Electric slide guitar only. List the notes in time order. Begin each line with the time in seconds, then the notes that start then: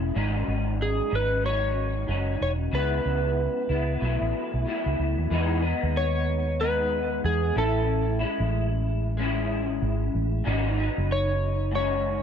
0.82 G#4
1.15 B4
1.46 C#5
2.42 C#5
2.75 B4
5.97 C#5
6.61 B4
7.25 G#4
7.58 A4
11.12 C#5
11.75 C#5